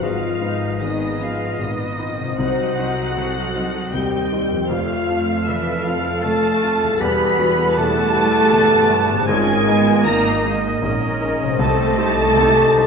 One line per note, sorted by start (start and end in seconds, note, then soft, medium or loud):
0.00 0.41 G#1 medium
0.00 1.57 G#1 medium
0.00 2.32 G#2 medium
0.00 0.41 G#2 medium
0.00 0.80 F3 medium
0.00 0.80 G#3 medium
0.00 2.34 B3 soft
0.00 2.27 D#4 soft
0.00 0.81 F4 medium
0.00 1.51 B4 soft
0.00 2.34 B4 medium
0.00 4.38 D#5 medium
0.00 0.81 F5 medium
0.00 0.80 F5 medium
0.00 2.39 A#5 soft
0.00 0.81 F6 medium
0.04 0.43 F4 medium
0.41 0.77 B3 soft
0.41 0.77 D#4 medium
0.41 0.81 D#4 medium
0.41 0.77 B4 medium
0.80 1.19 G#1 medium
0.80 1.19 G#2 medium
0.80 1.21 D#3 medium
0.80 1.59 B3 medium
0.80 1.19 D#4 medium
0.80 1.60 G#4 medium
0.80 1.19 D#5 medium
0.80 1.21 D#5 medium
0.80 1.19 D#6 medium
1.20 1.59 F3 medium
1.20 1.56 B3 soft
1.20 1.56 D#4 soft
1.20 1.60 F4 medium
1.20 1.56 B4 soft
1.20 1.58 F5 medium
1.20 1.59 F5 medium
1.20 1.60 F6 medium
1.59 1.97 G#1 soft
1.59 2.36 A#1 medium
1.59 1.97 G#2 medium
1.59 2.38 D#3 medium
1.59 1.99 B3 medium
1.59 2.38 D#4 medium
1.59 2.39 F4 medium
1.59 2.38 D#5 medium
1.59 2.39 D#5 medium
1.59 2.38 D#6 medium
1.99 2.34 B3 soft
1.99 3.93 C4 medium
1.99 2.34 D#4 medium
1.99 2.35 B4 medium
2.20 4.64 C3 medium
2.24 4.55 C4 soft
2.28 4.68 D#4 medium
2.33 6.23 C5 medium
2.33 3.64 F#5 medium
2.38 2.77 C2 medium
2.38 3.91 C2 medium
2.38 2.77 C3 medium
2.38 3.90 F#3 medium
2.38 2.78 D#4 medium
2.38 3.94 F#4 medium
2.38 4.39 C5 medium
2.38 3.90 F#5 medium
2.38 3.91 F#6 loud
2.78 3.13 C4 medium
2.78 3.13 D#4 soft
2.78 3.18 D#4 medium
2.78 3.13 C5 medium
3.17 3.54 C2 medium
3.17 3.55 C3 medium
3.17 3.94 A4 medium
3.56 3.90 C4 soft
3.56 3.90 D#4 soft
3.56 3.90 C5 medium
3.92 4.30 C2 medium
3.92 4.70 D#2 medium
3.92 4.30 C3 medium
3.92 4.70 G3 medium
3.92 4.68 C4 medium
3.92 4.31 G4 medium
3.92 4.69 G4 medium
3.92 4.69 G5 medium
3.92 4.70 G5 medium
3.92 4.69 G6 medium
4.32 4.66 C4 medium
4.32 4.66 D#4 medium
4.32 4.69 G4 medium
4.32 4.66 C5 medium
4.52 6.94 F2 medium
4.56 6.96 C4 medium
4.65 5.45 F3 medium
4.65 7.01 A4 medium
4.65 5.44 F5 medium
4.65 5.44 F6 loud
4.69 5.07 F1 medium
4.69 5.07 F2 medium
4.69 6.96 F2 medium
4.69 5.07 A3 medium
4.69 5.45 F4 medium
4.69 5.47 F4 medium
4.69 7.77 A4 medium
4.69 5.45 F5 medium
4.69 6.96 F5 medium
5.08 5.46 A3 medium
5.08 5.43 C4 medium
5.08 5.43 F4 medium
5.08 5.44 A4 medium
5.44 5.84 F1 medium
5.44 5.84 F2 medium
5.44 5.85 E3 medium
5.44 7.00 A4 medium
5.44 6.23 B4 medium
5.44 5.85 E5 medium
5.44 5.85 E5 loud
5.44 5.84 E6 medium
5.83 6.23 F3 medium
5.83 6.20 C4 soft
5.83 6.20 F4 soft
5.83 6.24 F4 medium
5.83 6.20 A4 medium
5.83 6.24 F5 medium
5.83 6.22 F6 loud
6.22 6.61 F1 medium
6.22 6.61 F2 medium
6.22 7.00 A3 medium
6.22 7.00 A3 loud
6.22 7.00 A4 loud
6.22 7.00 A5 loud
6.22 7.00 A6 loud
6.63 6.97 C4 medium
6.63 6.97 F4 medium
6.63 6.97 A4 medium
6.83 9.23 E2 medium
6.88 9.26 G3 medium
6.88 9.27 F#5 medium
6.99 7.38 E1 medium
6.99 8.49 E2 medium
6.99 7.37 E2 medium
6.99 8.50 G3 medium
6.99 7.75 B3 medium
6.99 7.38 G4 medium
6.99 7.76 B4 loud
6.99 9.25 F#5 medium
6.99 7.74 B5 loud
6.99 7.75 B5 loud
6.99 7.76 B6 loud
7.39 7.73 G3 medium
7.39 7.76 F#4 medium
7.39 7.73 F#4 medium
7.39 7.73 B4 medium
7.75 8.14 E1 medium
7.75 8.14 E2 medium
7.75 9.29 A3 loud
7.75 9.29 E4 medium
7.75 9.28 G4 medium
7.75 9.13 A4 loud
7.75 9.28 A5 loud
7.75 9.29 A5 loud
7.75 9.28 A6 loud
8.15 8.49 G3 medium
8.15 8.50 B4 medium
8.15 8.49 F#5 medium
8.52 8.89 E1 medium
8.52 9.27 G1 medium
8.52 8.89 E2 medium
8.52 9.29 B3 medium
8.90 9.25 G3 medium
8.90 9.25 B4 medium
8.90 9.25 F#5 medium
9.11 11.54 G#2 medium
9.15 11.57 G#3 medium
9.20 11.50 D#4 medium
9.24 9.66 C#4 loud
9.24 11.61 A#4 medium
9.24 12.87 D#5 loud
9.24 10.06 G#5 loud
9.24 10.04 G#5 loud
9.24 10.04 G#6 loud
9.28 10.83 G#1 loud
9.28 9.66 G#1 medium
9.28 9.66 G#2 medium
9.28 10.06 G#3 loud
9.28 10.04 F4 medium
9.28 10.05 G#4 loud
9.28 11.29 A#4 medium
9.67 10.02 G#3 medium
9.67 10.05 B3 loud
9.67 10.02 D#4 medium
9.67 10.02 A#4 medium
10.05 10.43 G#1 medium
10.05 10.43 G#2 medium
10.05 10.44 A#3 loud
10.05 10.83 A#3 medium
10.05 10.83 D#4 medium
10.05 10.45 A#4 medium
10.05 10.44 A#5 loud
10.05 10.44 A#6 loud
10.45 10.79 G#3 medium
10.45 10.79 D#4 medium
10.45 10.80 A#4 medium
10.82 11.20 G#1 medium
10.82 11.59 A#1 medium
10.82 11.20 G#2 medium
10.82 11.60 C#4 medium
10.82 11.59 A#4 loud
11.21 11.56 G#3 medium
11.21 11.56 D#4 medium
11.21 11.57 A#4 medium
11.42 12.87 C3 medium
11.47 12.87 G3 medium
11.51 12.87 D#4 medium
11.56 11.97 C2 medium
11.56 11.97 C3 medium
11.56 12.87 C5 medium
11.56 12.87 A5 loud
11.56 12.87 A6 loud
11.60 12.87 C2 loud
11.60 12.87 A3 loud
11.60 12.37 C4 loud
11.60 12.87 G4 medium
11.60 12.87 A4 loud
11.60 11.99 A4 loud
11.98 12.34 G3 medium
11.98 12.34 D#4 medium
11.98 12.38 G4 medium
11.98 12.34 C5 medium
12.37 12.76 C2 medium
12.37 12.76 C3 medium
12.37 12.87 C4 medium
12.37 12.87 D#4 medium
12.77 12.87 G3 medium
12.77 12.87 D#4 medium
12.77 12.87 C5 medium